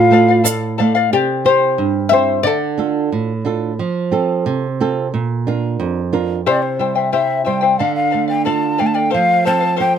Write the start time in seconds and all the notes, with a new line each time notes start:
Already playing: A2 F4 A4 D5 F5
0.11 A3 A4 D5 F5
0.28 D5 F5
0.44 A4 D5 F5, shaker
0.78 A3 A4 D5 F5
0.95 D5 F5
1.13 C3 G4 D5
1.45 C4 E4 G4 C5
1.78 G2
2.09 C4 E4 G4 C5 E5
2.43 D3 A4 D5
2.78 D4 F4 A4
3.12 A2
3.45 D4 F4 A4
3.79 F3
4.12 C4 F4 A4
4.46 C3
4.80 C4 F4 A4
5.14 A#2
5.47 D4 F4 A#4
5.80 F2
6.13 D4 F4 A#4
6.46 C3 E4 G4 C5 D5 E5 G5
6.62 C5
6.79 G3 E4 C5 E5 G5
6.95 E4 C5 E5 G5
7.12 E4 G4 C5 E5 G5
7.45 G3 E4 C5 E5 G5
7.61 E4 C5 G5
7.79 D3 A4 D5 F5
7.95 F5
8.10 A3 A4 D5 F5
8.28 D5 F5 G5
8.45 F4 A4 D5 F5 A5
8.78 A3 A4 D5 F5 G5
8.87 A5
8.94 D5 F5 G5
9.10 A4 C5 F5
9.14 F3
9.45 C4 A4 C5 F5 A5
9.61 C5 F5
9.76 A4 C5 F5 G5